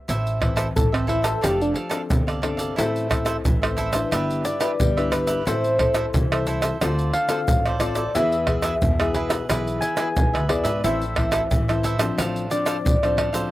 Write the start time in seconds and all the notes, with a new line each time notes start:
0.08 A1 A2 E4 A4 C5 E5, pandeiro, shaker, surdo
0.27 pandeiro, shaker
0.40 E3 C4 E4 A4 C5 E5, pandeiro, tamborim, surdo
0.56 E4 A4 C5 E5, pandeiro, tamborim, shaker
0.76 A1 E3 A4, pandeiro, shaker, surdo
0.92 E3 C4 E4 A4 C5 E5, pandeiro, tamborim, shaker
1.07 E4 A4 C5 E5, pandeiro
1.22 A4 C5 E5, pandeiro, tamborim, shaker
1.41 F1 F3 C4 D4 G4 A4 D5 F5, pandeiro, tamborim, shaker, surdo
1.61 D4, pandeiro, shaker
1.74 D4 A4 D5 F5, pandeiro
1.89 C4 D4 A4 D5 F5, pandeiro, tamborim, shaker
2.10 G1 C3, pandeiro, shaker, surdo
2.27 A4 D5 F5, pandeiro, tamborim, shaker
2.42 C4 D4 A4 D5 F5, pandeiro, tamborim
2.57 A4 D5 F5, pandeiro, shaker
2.76 A1 A3 C4 E4 A4 C5 E5, pandeiro, shaker, surdo
2.96 pandeiro, shaker
3.09 C4 E4 A4 C5 E5, pandeiro, tamborim, shaker, surdo
3.25 E4 A4 C5 E5, pandeiro, tamborim, shaker
3.45 A1 E3, pandeiro, shaker, surdo
3.62 C4 E4 A4 C5 E5, pandeiro, tamborim, shaker
3.77 E4 A4 C5 E5, pandeiro, shaker
3.92 D4 E4 A4 B4 C5 E5, pandeiro, tamborim, shaker
4.11 G1 G3 D4 G4 B4 E5, pandeiro, tamborim, shaker, surdo
4.30 pandeiro, shaker
4.44 D4 G4 B4 D5 E5, pandeiro, shaker
4.60 D4 E4 G4 B4 E5, pandeiro, tamborim, shaker
4.80 G1 G3, pandeiro, shaker, surdo
4.97 D4 E4 G4 B4 E5, pandeiro, tamborim, shaker
5.12 D4 G4 B4 E5, pandeiro, tamborim, shaker
5.27 G4 B4 E5, pandeiro, shaker
5.45 A1 A3 C4 E4 A4 C5 E5, pandeiro, shaker, surdo
5.64 pandeiro, shaker
5.79 C4 E4 A4 C5 E5, pandeiro, tamborim, surdo
5.94 E4 A4 C5 E5, pandeiro, tamborim, shaker
6.14 C2 E3, pandeiro, shaker, surdo
6.32 C4 E4 A4 C5 E5, pandeiro, tamborim, shaker
6.47 E4 A4 C5 E5, pandeiro, shaker
6.62 A4 C5 E5, pandeiro, tamborim, shaker
6.81 D2 D3 C4 F4 A4 C5 D5, pandeiro, tamborim, shaker, surdo
6.99 pandeiro, shaker
7.13 F4 A4 C5 D5 F5, pandeiro
7.29 C4 F4 A4 C5 D5, pandeiro, tamborim, shaker
7.48 A1 A2, pandeiro, shaker, surdo
7.66 A4 C5 D5, pandeiro, tamborim, shaker
7.80 C4 F4 A4 C5 D5, pandeiro, tamborim, shaker
7.95 A4 C5 D5, pandeiro, shaker
8.15 E2 E3 B3 E4 G#4 B4 E5, pandeiro, shaker, surdo
8.32 pandeiro, shaker
8.47 B3 E4 G#4 B4 E5, pandeiro, tamborim, surdo
8.62 E4 G#4 B4 E5, pandeiro, tamborim, shaker
8.82 E2 B2, pandeiro, shaker, surdo
8.99 B3 E4 G#4 B4 E5, pandeiro, tamborim, shaker
9.14 E4 G#4 B4 E5, pandeiro
9.29 G#4 B4 E5, pandeiro, tamborim, shaker
9.49 B1 E3 B3 E4 G#4 B4 E5, pandeiro, tamborim, shaker, surdo
9.67 pandeiro, shaker
9.81 E4 G#4 B4 E5 G#5, pandeiro, shaker
9.97 B3 E4 G#4 B4 E5, pandeiro, tamborim, shaker
10.17 B1 B2, pandeiro, shaker, surdo
10.34 D2 G#4 B4 E5, pandeiro, tamborim, shaker
10.49 E2 B3 E4 G#4 B4 D5 E5, pandeiro, tamborim
10.64 G#2 G#4 B4 E5, pandeiro, shaker
10.84 A1 A2 E3 C4 E4 A4 C5 E5, pandeiro, shaker, surdo
11.02 pandeiro, shaker
11.15 E3 C4 E4 A4 C5 E5, pandeiro, tamborim, surdo
11.31 E4 A4 C5 E5, pandeiro, tamborim, shaker
11.51 A1 E3, pandeiro, shaker, surdo
11.68 E3 C4 E4 A4 C5 E5, pandeiro, tamborim, shaker
11.83 E4 A4 C5 E5, pandeiro, shaker
11.98 F3 C4 D4 A4 C5 E5, pandeiro, tamborim, shaker
12.18 A1 A2 D4 A4 C5 F5, pandeiro, tamborim, shaker, surdo
12.36 pandeiro, shaker
12.50 F3 C4 D4 A4 C5 D5 F5, pandeiro, shaker
12.66 D4 A4 C5 F5, pandeiro, tamborim, shaker
12.85 A1 A2, pandeiro, shaker, surdo
13.03 F3 C4 D4 A4 C5 F5, pandeiro, tamborim, shaker
13.17 D4 A4 C5 F5, pandeiro, tamborim
13.33 F3 C4 D4 A4 C5 F5, pandeiro, shaker